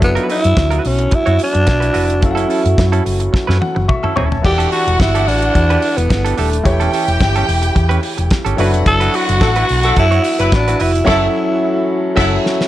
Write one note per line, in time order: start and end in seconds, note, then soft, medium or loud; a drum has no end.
0.00 0.17 F#1 medium
0.00 4.27 E3 medium
0.00 1.94 F#3 medium
0.00 2.21 B3 medium
0.00 0.29 B3 medium
0.00 1.91 D4 medium
0.00 1.92 E4 medium
0.00 4.27 F#4 medium
0.00 1.92 A4 medium
0.00 1.93 B4 medium
0.00 muted clean electric guitar stroke soft
0.00 kick loud
0.00 closed hi-hat medium
0.15 0.27 E4 medium
0.15 0.28 F#4 medium
0.15 0.29 B4 medium
0.15 closed hi-hat soft
0.28 0.45 E4 medium
0.28 0.88 E4 loud
0.28 0.43 F#4 medium
0.28 0.42 B4 medium
0.28 open hi-hat medium
0.43 0.55 F#2 medium
0.43 muted clean electric guitar stroke soft
0.43 closed hi-hat medium
0.57 0.78 D2 medium
0.57 muted clean electric guitar stroke soft
0.57 kick loud
0.57 snare loud
0.57 closed hi-hat medium
0.70 0.83 E4 medium
0.70 0.84 F#4 medium
0.70 0.85 B4 medium
0.70 closed hi-hat soft
0.84 1.06 B1 medium
0.84 1.16 C#4 medium
0.84 muted clean electric guitar stroke soft
0.84 open hi-hat medium
0.99 muted clean electric guitar stroke soft
0.99 closed hi-hat soft
1.11 1.41 E4 loud
1.11 muted clean electric guitar stroke soft
1.11 muted fingered electric bass stroke soft
1.11 kick loud
1.11 closed hi-hat medium
1.26 1.37 F#2 medium
1.26 1.38 E4 medium
1.26 1.38 F#4 medium
1.26 1.40 C#5 medium
1.26 closed hi-hat soft
1.39 2.21 D4 loud
1.39 muted clean electric guitar stroke soft
1.39 open hi-hat medium
1.53 1.65 F#2 medium
1.53 muted clean electric guitar stroke soft
1.53 closed hi-hat soft
1.66 1.89 B1 medium
1.66 muted clean electric guitar stroke soft
1.66 kick loud
1.66 snare medium
1.66 closed hi-hat medium
1.80 1.92 E4 medium
1.80 1.92 F#4 soft
1.80 1.94 B4 medium
1.80 closed hi-hat medium
1.93 2.23 F1 medium
1.93 2.14 E4 medium
1.93 2.07 F#4 medium
1.93 2.06 B4 medium
1.93 open hi-hat medium
2.07 muted clean electric guitar stroke soft
2.07 closed hi-hat soft
2.20 2.44 F#1 loud
2.20 3.85 F#3 medium
2.20 4.27 A3 medium
2.20 3.85 C#4 medium
2.20 3.85 E4 medium
2.20 3.86 A4 medium
2.20 2.31 F5 medium
2.20 muted clean electric guitar stroke soft
2.20 kick loud
2.20 closed hi-hat medium
2.25 3.03 E4 medium
2.31 3.59 F#5 medium
2.35 2.47 C#4 medium
2.35 2.48 E4 medium
2.35 2.49 A4 medium
2.35 closed hi-hat soft
2.48 2.65 C#4 medium
2.48 2.64 E4 medium
2.48 2.63 A4 medium
2.48 open hi-hat medium
2.64 2.75 F#2 loud
2.64 muted clean electric guitar stroke soft
2.64 closed hi-hat soft
2.78 2.99 F#2 loud
2.78 muted clean electric guitar stroke soft
2.78 kick loud
2.78 snare loud
2.78 closed hi-hat medium
2.92 3.04 C#4 medium
2.92 3.05 E4 medium
2.92 3.05 A4 medium
2.92 closed hi-hat soft
3.06 3.27 F#1 medium
3.06 muted clean electric guitar stroke soft
3.06 open hi-hat medium
3.20 muted clean electric guitar stroke soft
3.20 closed hi-hat soft
3.33 muted clean electric guitar stroke soft
3.33 muted fingered electric bass stroke soft
3.33 kick loud
3.33 snare medium
3.47 3.58 F#2 medium
3.47 3.59 C#4 medium
3.47 3.60 E4 medium
3.47 3.61 B4 medium
3.47 snare medium
3.61 3.87 F#5 medium
3.61 high tom medium
3.75 3.86 F#1 medium
3.75 muted clean electric guitar stroke soft
3.75 high tom medium
3.88 4.14 E5 medium
3.88 4.03 C#6 medium
3.88 muted clean electric guitar stroke soft
3.88 kick loud
3.88 mid tom medium
4.03 4.15 C#4 soft
4.03 4.16 E4 medium
4.03 4.17 A4 medium
4.03 4.16 E6 medium
4.03 mid tom medium
4.16 4.38 D#1 medium
4.16 4.37 C#4 medium
4.16 4.31 E4 medium
4.16 4.30 A4 medium
4.16 4.42 C#5 medium
4.16 4.30 C#6 medium
4.16 floor tom loud
4.30 4.57 A5 medium
4.30 muted clean electric guitar stroke soft
4.30 floor tom medium
4.42 4.65 E1 medium
4.42 6.63 D3 medium
4.42 6.60 E3 medium
4.42 6.63 G3 medium
4.42 8.55 A3 medium
4.42 6.60 E4 medium
4.42 6.63 E4 medium
4.42 6.61 F#4 medium
4.42 6.34 F#4 loud
4.42 6.61 G4 medium
4.42 4.71 G4 loud
4.42 6.61 A4 medium
4.42 6.62 D5 medium
4.42 6.33 F#5 loud
4.42 muted clean electric guitar stroke soft
4.42 kick medium
4.42 crash medium
4.58 4.71 D4 medium
4.58 4.71 G4 medium
4.58 4.72 A4 loud
4.58 closed hi-hat soft
4.72 4.87 D4 medium
4.72 5.01 F#4 loud
4.72 4.88 G4 medium
4.72 4.86 A4 medium
4.72 open hi-hat medium
4.87 4.97 E1 medium
4.87 muted clean electric guitar stroke soft
4.87 closed hi-hat soft
5.00 5.28 G1 medium
5.00 5.29 E4 loud
5.00 muted clean electric guitar stroke soft
5.00 kick loud
5.00 snare loud
5.00 closed hi-hat medium
5.15 5.26 D4 medium
5.15 5.27 G4 medium
5.15 5.27 A4 medium
5.15 closed hi-hat soft
5.28 5.48 A1 medium
5.28 5.99 D4 loud
5.28 muted clean electric guitar stroke soft
5.28 open hi-hat medium
5.42 muted clean electric guitar stroke soft
5.42 closed hi-hat soft
5.55 5.76 E2 loud
5.55 muted clean electric guitar stroke soft
5.55 kick medium
5.55 closed hi-hat medium
5.70 5.81 D4 medium
5.70 5.83 G4 medium
5.70 5.83 B4 medium
5.70 closed hi-hat soft
5.82 muted clean electric guitar stroke soft
5.82 open hi-hat medium
5.97 6.07 E1 loud
5.97 6.40 B3 medium
5.97 muted clean electric guitar stroke soft
5.97 closed hi-hat soft
6.10 6.31 G1 loud
6.10 muted clean electric guitar stroke medium
6.10 kick loud
6.10 snare medium
6.10 closed hi-hat medium
6.24 6.36 D4 medium
6.24 6.37 G4 medium
6.24 6.37 A4 medium
6.24 closed hi-hat medium
6.37 6.59 D#1 medium
6.37 6.93 A3 medium
6.37 6.57 D4 medium
6.37 6.52 G4 medium
6.37 6.51 A4 medium
6.37 open hi-hat medium
6.52 muted clean electric guitar stroke soft
6.52 closed hi-hat soft
6.63 6.86 E1 loud
6.63 8.56 C#3 medium
6.63 8.54 E3 medium
6.63 8.54 E4 medium
6.63 8.54 G4 medium
6.63 8.27 G4 medium
6.63 8.57 G4 medium
6.63 8.55 B4 medium
6.63 8.55 C#5 medium
6.63 8.28 G5 loud
6.63 muted clean electric guitar stroke soft
6.63 kick loud
6.63 closed hi-hat medium
6.80 6.91 C#4 medium
6.80 6.92 G4 medium
6.80 6.93 A4 medium
6.80 closed hi-hat soft
6.93 7.08 C#4 medium
6.93 7.07 G4 medium
6.93 7.07 A4 medium
6.93 open hi-hat medium
7.08 7.17 E1 medium
7.08 muted clean electric guitar stroke soft
7.08 closed hi-hat soft
7.21 7.42 G1 medium
7.21 muted clean electric guitar stroke medium
7.21 kick loud
7.21 snare loud
7.21 closed hi-hat medium
7.36 7.47 C#4 medium
7.36 7.47 G4 medium
7.36 7.48 A4 medium
7.36 closed hi-hat soft
7.48 7.69 E1 loud
7.48 muted clean electric guitar stroke soft
7.48 open hi-hat medium
7.62 muted clean electric guitar stroke soft
7.62 closed hi-hat medium
7.75 7.97 E2 loud
7.75 muted clean electric guitar stroke soft
7.75 kick medium
7.75 closed hi-hat medium
7.89 8.01 C#4 medium
7.89 8.02 G4 medium
7.89 8.03 B4 medium
7.89 closed hi-hat soft
8.02 muted clean electric guitar stroke soft
8.02 open hi-hat medium
8.18 8.28 E1 medium
8.18 muted clean electric guitar stroke soft
8.18 closed hi-hat soft
8.31 muted clean electric guitar stroke soft
8.31 kick loud
8.31 snare loud
8.31 closed hi-hat medium
8.45 8.55 G1 medium
8.45 8.58 C#4 medium
8.45 8.59 G4 medium
8.45 8.59 A4 medium
8.45 closed hi-hat medium
8.57 8.73 F#1 medium
8.57 12.68 E3 medium
8.57 10.74 F#3 medium
8.57 11.05 B3 medium
8.57 10.75 D4 medium
8.57 10.75 E4 medium
8.57 8.78 E4 medium
8.57 10.76 F#4 loud
8.57 12.68 F#4 medium
8.57 8.73 F#4 medium
8.57 10.76 A4 medium
8.57 10.76 B4 medium
8.57 8.72 B4 medium
8.57 10.76 F#5 loud
8.57 open hi-hat medium
8.73 8.83 F1 medium
8.73 muted clean electric guitar stroke medium
8.73 closed hi-hat soft
8.86 9.07 F#1 loud
8.86 9.17 A4 loud
8.86 muted clean electric guitar stroke soft
8.86 kick loud
8.86 closed hi-hat medium
9.00 9.13 E4 medium
9.00 9.14 F#4 medium
9.00 9.14 B4 medium
9.00 closed hi-hat soft
9.14 9.29 E4 medium
9.14 9.29 F#4 medium
9.14 9.97 F#4 loud
9.14 9.27 B4 medium
9.14 open hi-hat medium
9.29 9.39 F#1 loud
9.29 muted clean electric guitar stroke medium
9.29 closed hi-hat medium
9.41 9.62 A1 medium
9.41 9.51 F#3 medium
9.41 9.51 E4 medium
9.41 9.51 A4 loud
9.41 muted clean electric guitar stroke medium
9.41 kick loud
9.41 snare loud
9.41 closed hi-hat medium
9.56 9.68 E4 medium
9.56 9.69 F#4 medium
9.56 9.69 B4 medium
9.56 closed hi-hat soft
9.69 9.91 B1 medium
9.69 muted clean electric guitar stroke medium
9.69 open hi-hat medium
9.83 9.92 F#3 medium
9.83 9.92 E4 medium
9.83 9.92 A4 medium
9.83 muted clean electric guitar stroke medium
9.83 closed hi-hat soft
9.96 10.18 F#2 loud
9.96 10.06 F#3 medium
9.96 10.06 E4 medium
9.96 10.55 E4 loud
9.96 10.06 A4 medium
9.96 muted clean electric guitar stroke medium
9.96 kick medium
9.96 closed hi-hat medium
10.11 10.24 E4 medium
10.11 10.24 F#4 medium
10.11 10.25 C#5 medium
10.11 closed hi-hat soft
10.24 muted clean electric guitar stroke soft
10.24 open hi-hat medium
10.39 10.49 F#1 medium
10.39 10.78 F#3 loud
10.39 10.78 E4 loud
10.39 10.78 B4 loud
10.39 muted clean electric guitar stroke soft
10.39 closed hi-hat medium
10.52 10.73 A1 loud
10.52 10.83 D4 medium
10.52 muted clean electric guitar stroke soft
10.52 kick loud
10.52 snare loud
10.52 closed hi-hat medium
10.68 10.78 E4 medium
10.68 10.79 F#4 medium
10.68 10.80 B4 medium
10.68 closed hi-hat medium
10.79 11.01 F1 medium
10.79 10.99 E4 medium
10.79 12.18 E4 medium
10.79 10.94 F#4 medium
10.79 10.93 B4 medium
10.79 open hi-hat medium
10.94 muted clean electric guitar stroke soft
10.94 closed hi-hat soft
11.05 11.26 F#1 medium
11.05 11.25 F#3 loud
11.05 11.22 F#3 loud
11.05 12.68 A3 medium
11.05 11.25 C#4 loud
11.05 11.25 E4 loud
11.05 11.22 E4 loud
11.05 11.26 E4 loud
11.05 11.27 E4 loud
11.05 11.26 A4 loud
11.05 11.22 A4 loud
11.05 11.26 C#5 loud
11.05 11.26 E5 loud
11.05 11.26 F#5 loud
11.05 kick loud
11.05 crash medium
11.09 snare loud
12.15 12.37 F#1 loud
12.15 12.35 F#3 loud
12.15 12.32 F#3 loud
12.15 12.35 C#4 loud
12.15 12.36 E4 loud
12.15 12.32 E4 loud
12.15 12.37 E4 loud
12.15 12.36 A4 loud
12.15 12.32 A4 medium
12.15 12.36 E5 loud
12.15 12.37 F#5 loud
12.15 kick loud
12.15 snare medium
12.15 crash medium
12.46 snare medium
12.61 snare medium